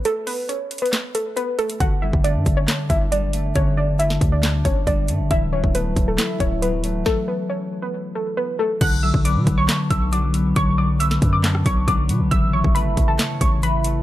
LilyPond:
<<
  \new Staff \with { instrumentName = "Synth pluck" } { \time 4/4 \key b \minor \tempo 4 = 137 a'8 b'8 cis''8. b'8. a'8 b'8 a'8 | fis''8 e''8 d''8. cis''8. e''8 d''4 | cis''8 d''8 e''8. d''8. cis''8 d''4 | e''8 cis''8 b'8. a'8. cis''8 b'4 |
a'8 b'8 cis''8. b'8. a'8 b'8 a'8 | fis'''8 e'''8 d'''8. cis'''8. e'''8 d'''4 | cis'''8 d'''8 e'''8. d'''8. cis'''8 d'''4 | e'''8 cis'''8 b''8. a''8. cis'''8 b''4 | }
  \new Staff \with { instrumentName = "Harp" } { \clef bass \time 4/4 \key b \minor r1 | d8 g8 a4 d'8 d8 g8 a8 | d8 g8 a4 d'8 d8 g8 a8 | e8 fis8 a4 e'8 e8 fis8 a8~ |
a2 r2 | d8 fis8 b4 d'8 d8 fis8 b8 | d8 fis8 b4 d'8 d8 fis8 b8 | cis8 e8 a4 cis''8 cis8 e8 a8 | }
  \new Staff \with { instrumentName = "808-style bass" } { \clef bass \time 4/4 \key b \minor r1 | g,,8. g,,8 g,16 g,,8 r8 g,,4. | g,,4. d,4 g,,8 g,,8 g,16 g,,16 | d,,8. d,,8 cis,,16 d,,8 r8 d,,4. |
r1 | b,,8. b,,8 b,16 b,,8 r8 b,,4. | b,,4. fis,4 b,,8 b,,8 b,16 b,,16 | a,,8. a,,8 g,,16 a,,8 r8 a,,4. | }
  \new DrumStaff \with { instrumentName = "Drums" } \drummode { \time 4/4 hh8 hho8 \tuplet 3/2 { hh16 r16 r16 hh16 hh16 hh16 } <hc hh sn>8 hh8 hh8 hh16 hh16 | <hh bd>8. bd16 hh8 <hh bd>8 <hc hh sn>8 <hh bd>8 hh8 hh8 | <hh bd>4 hh16 sn16 <hh bd>8 <hc hh sn>8 <hh bd>8 <hh bd>8 hh8 | <hh bd>8. bd16 hh8 <hh bd>8 <hc hh sn>8 <hh bd>8 hh8 hh8 |
<bd sn>4 r4 r4 r4 | <cymc hh bd>8. bd16 hh8 <hh bd>8 <hc hh sn>8 <hh bd>8 hh8 hh8 | <hh bd>4 hh16 sn16 <hh bd>8 <hc hh sn>16 ss16 <hh bd>8 <hh bd>8 hh8 | <hh bd>8. bd16 hh8 <hh bd>8 <hc hh sn>8 <hh bd>8 hh8 hh8 | }
>>